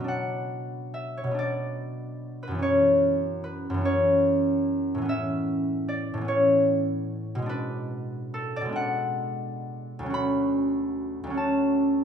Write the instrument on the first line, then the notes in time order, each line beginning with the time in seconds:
harp
Already playing: F#1 B2 F#3 E4 C#5 D5
0.00 B3 D4
0.08 F#5
0.94 E5
1.17 C#5
1.24 B2 F#3
1.31 B3 D4
1.39 D5
2.43 B4
2.47 F#2 E3
2.55 B3 C#4
2.62 C#5
3.44 B4
3.70 F#2
3.74 E3 B3
3.81 C#4
3.85 C#5
4.95 A2 E3
5.02 B3 C#4
5.09 E5
5.88 D5
6.14 A2 E3
6.21 B3 C#4
6.28 C#5
7.35 B2 G#3
7.42 B3 D4
7.49 B4
8.34 A4
8.56 D5
8.61 B2 G#3
8.69 B3 D4
8.76 F#5
9.99 D2 F#3
10.06 C#4 F#4
10.14 B5
11.24 D2 F#3
11.30 C#4
11.34 F#4 A5